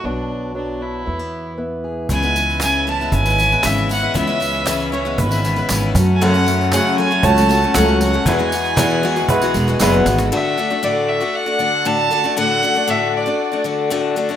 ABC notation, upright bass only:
X:1
M:4/4
L:1/8
Q:1/4=117
K:Dlyd
V:1 name="Upright bass" clef=bass
B,,,4 E,,4 | C,,4 G,,,2 G,,,2 | C,,4 G,,,2 G,,, F,,- | F,,3 z C,,2 C,,2 |
E,,4 B,,, E,,, F,,, G,,, | z8 | z8 |]